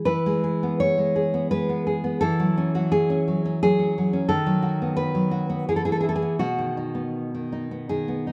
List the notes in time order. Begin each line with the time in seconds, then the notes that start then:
0.05 E3 B4
0.26 G#3
0.44 G#4
0.63 B3
0.80 C#5
0.98 G#3
1.16 G#4
1.34 B3
1.51 G#3 B4
1.69 B3
1.87 G#4
2.04 B3
2.21 E3 A4
2.40 F#3
2.58 C#4
2.75 F#3 F#4
2.92 G#4
3.10 C#4
3.28 F#3
3.45 C#4
3.63 F#3 G#4
3.79 C#4
3.98 F#3
4.13 C#4
4.29 D#3 A4
4.46 F#3
4.62 F#4
4.82 B3
4.97 B4
5.15 F#3
5.31 F#4
5.50 B3
5.69 E3 G#4
5.76 A4
5.85 E3 G#4
5.92 A4
6.00 E4 G#4
6.09 A4
6.16 G#4
6.22 B3
6.39 B2 F#4
6.58 D#3
6.77 D#4
6.95 B3
7.35 D#3
7.52 D#4
7.71 B3
7.89 D#3 G#4
8.08 B3
8.27 D#4